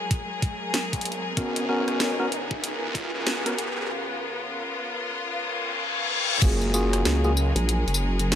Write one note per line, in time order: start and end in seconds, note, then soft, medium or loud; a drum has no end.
0.00 1.34 F#3 medium
0.00 1.33 G#3 medium
0.00 3.86 G#4 medium
0.00 6.39 A#4 medium
0.00 riser medium
0.11 kick loud
0.11 closed hi-hat medium
0.42 kick loud
0.42 closed hi-hat medium
0.74 snare loud
0.74 closed hi-hat medium
0.93 1.22 A#1 medium
0.93 kick medium
0.93 closed hi-hat medium
1.01 closed hi-hat soft
1.05 closed hi-hat medium
1.12 closed hi-hat soft
1.37 1.85 G#1 loud
1.37 6.38 C#3 medium
1.37 1.66 B3 medium
1.37 6.38 B3 medium
1.37 1.66 C#4 medium
1.37 1.66 F#4 medium
1.37 1.66 A#4 loud
1.37 kick loud
1.37 closed hi-hat medium
1.56 closed hi-hat medium
1.69 2.15 B3 medium
1.69 2.15 C#4 medium
1.69 2.15 F#4 medium
1.69 2.15 A#4 loud
1.88 2.48 B1 medium
1.88 cross-stick soft
1.88 closed hi-hat soft
2.00 snare loud
2.00 closed hi-hat medium
2.20 2.26 B3 loud
2.20 2.26 C#4 medium
2.20 2.26 F#4 medium
2.20 2.26 A#4 loud
2.32 closed hi-hat medium
2.51 2.80 C#2 medium
2.51 kick loud
2.64 closed hi-hat medium
2.83 3.11 D#2 loud
2.95 kick loud
2.95 closed hi-hat medium
3.14 3.56 C#2 loud
3.27 snare loud
3.27 closed hi-hat medium
3.46 3.52 B3 loud
3.46 3.52 C#4 medium
3.46 3.52 F#4 medium
3.46 3.52 A#4 loud
3.46 closed hi-hat medium
3.58 3.90 F#1 loud
3.58 closed hi-hat medium
3.78 cross-stick soft
3.90 6.40 F4 medium
5.16 reverse cymbal medium
6.42 7.03 F#1 loud
6.42 8.35 F#3 medium
6.42 8.35 G#3 medium
6.42 6.71 A#3 medium
6.42 6.71 F4 medium
6.42 6.71 F#4 medium
6.42 6.71 G#4 medium
6.42 8.35 G#4 medium
6.42 8.35 A#4 medium
6.42 kick loud
6.42 closed hi-hat medium
6.42 crash loud
6.42 tambourine soft
6.61 tambourine soft
6.74 7.20 A#3 medium
6.74 7.20 F4 medium
6.74 7.20 F#4 medium
6.74 7.20 G#4 loud
6.74 tambourine medium
6.93 cross-stick medium
6.93 closed hi-hat medium
6.93 tambourine soft
7.05 7.53 C#2 loud
7.05 snare loud
7.05 closed hi-hat medium
7.05 tambourine soft
7.24 7.31 A#3 loud
7.24 7.31 F4 medium
7.24 7.31 F#4 medium
7.24 7.31 G#4 loud
7.24 tambourine soft
7.37 tambourine medium
7.56 7.85 A#1 medium
7.56 closed hi-hat medium
7.56 tambourine soft
7.69 closed hi-hat medium
7.69 tambourine soft
7.87 8.35 F#1 loud
7.87 closed hi-hat soft
7.87 tambourine soft
7.94 tambourine medium
8.19 closed hi-hat medium
8.19 tambourine soft
8.32 snare loud
8.32 closed hi-hat medium
8.32 tambourine soft